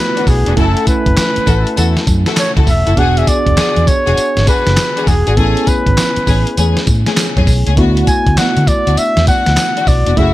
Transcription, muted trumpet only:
0, 0, Header, 1, 2, 480
1, 0, Start_track
1, 0, Tempo, 600000
1, 458, Time_signature, 4, 2, 24, 8
1, 8269, End_track
2, 0, Start_track
2, 0, Title_t, "Muted trumpet"
2, 0, Program_c, 0, 59
2, 0, Note_on_c, 0, 71, 114
2, 227, Note_on_c, 0, 68, 93
2, 239, Note_off_c, 0, 71, 0
2, 463, Note_off_c, 0, 68, 0
2, 469, Note_on_c, 0, 69, 89
2, 687, Note_off_c, 0, 69, 0
2, 708, Note_on_c, 0, 71, 98
2, 1631, Note_off_c, 0, 71, 0
2, 1915, Note_on_c, 0, 73, 96
2, 2019, Note_off_c, 0, 73, 0
2, 2152, Note_on_c, 0, 76, 104
2, 2388, Note_on_c, 0, 78, 111
2, 2400, Note_off_c, 0, 76, 0
2, 2546, Note_on_c, 0, 76, 103
2, 2558, Note_off_c, 0, 78, 0
2, 2626, Note_on_c, 0, 74, 115
2, 2638, Note_off_c, 0, 76, 0
2, 3106, Note_on_c, 0, 73, 111
2, 3118, Note_off_c, 0, 74, 0
2, 3582, Note_off_c, 0, 73, 0
2, 3587, Note_on_c, 0, 71, 113
2, 4065, Note_on_c, 0, 68, 93
2, 4077, Note_off_c, 0, 71, 0
2, 4301, Note_on_c, 0, 69, 97
2, 4313, Note_off_c, 0, 68, 0
2, 4544, Note_on_c, 0, 71, 100
2, 4556, Note_off_c, 0, 69, 0
2, 5501, Note_off_c, 0, 71, 0
2, 6464, Note_on_c, 0, 80, 107
2, 6707, Note_on_c, 0, 78, 105
2, 6719, Note_off_c, 0, 80, 0
2, 6944, Note_on_c, 0, 74, 102
2, 6956, Note_off_c, 0, 78, 0
2, 7186, Note_on_c, 0, 76, 113
2, 7198, Note_off_c, 0, 74, 0
2, 7422, Note_off_c, 0, 76, 0
2, 7427, Note_on_c, 0, 78, 120
2, 7904, Note_on_c, 0, 74, 101
2, 7916, Note_off_c, 0, 78, 0
2, 8145, Note_on_c, 0, 76, 106
2, 8157, Note_off_c, 0, 74, 0
2, 8269, Note_off_c, 0, 76, 0
2, 8269, End_track
0, 0, End_of_file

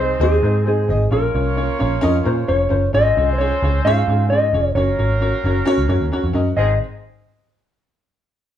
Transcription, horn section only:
0, 0, Header, 1, 2, 480
1, 0, Start_track
1, 0, Tempo, 454545
1, 1178, Time_signature, 4, 2, 24, 8
1, 9059, End_track
2, 0, Start_track
2, 0, Title_t, "Horn section"
2, 0, Program_c, 0, 61
2, 0, Note_on_c, 0, 56, 82
2, 0, Note_on_c, 0, 60, 79
2, 0, Note_on_c, 0, 63, 80
2, 0, Note_on_c, 0, 72, 86
2, 897, Note_off_c, 0, 60, 0
2, 897, Note_off_c, 0, 72, 0
2, 899, Note_off_c, 0, 56, 0
2, 899, Note_off_c, 0, 63, 0
2, 1173, Note_on_c, 0, 61, 77
2, 1173, Note_on_c, 0, 65, 75
2, 1173, Note_on_c, 0, 73, 84
2, 1174, Note_on_c, 0, 58, 80
2, 2822, Note_off_c, 0, 58, 0
2, 2822, Note_off_c, 0, 61, 0
2, 2822, Note_off_c, 0, 65, 0
2, 2822, Note_off_c, 0, 73, 0
2, 3102, Note_on_c, 0, 60, 88
2, 3102, Note_on_c, 0, 72, 96
2, 3103, Note_on_c, 0, 56, 77
2, 3103, Note_on_c, 0, 65, 74
2, 4747, Note_off_c, 0, 60, 0
2, 4747, Note_off_c, 0, 65, 0
2, 4747, Note_off_c, 0, 72, 0
2, 4748, Note_off_c, 0, 56, 0
2, 5015, Note_on_c, 0, 54, 77
2, 5018, Note_on_c, 0, 58, 88
2, 5018, Note_on_c, 0, 70, 95
2, 5020, Note_on_c, 0, 61, 79
2, 6663, Note_off_c, 0, 54, 0
2, 6665, Note_off_c, 0, 58, 0
2, 6665, Note_off_c, 0, 70, 0
2, 6666, Note_off_c, 0, 61, 0
2, 6926, Note_on_c, 0, 51, 79
2, 6928, Note_on_c, 0, 56, 76
2, 6928, Note_on_c, 0, 68, 82
2, 6930, Note_on_c, 0, 60, 82
2, 7098, Note_off_c, 0, 51, 0
2, 7099, Note_off_c, 0, 56, 0
2, 7099, Note_off_c, 0, 68, 0
2, 7100, Note_off_c, 0, 60, 0
2, 9059, End_track
0, 0, End_of_file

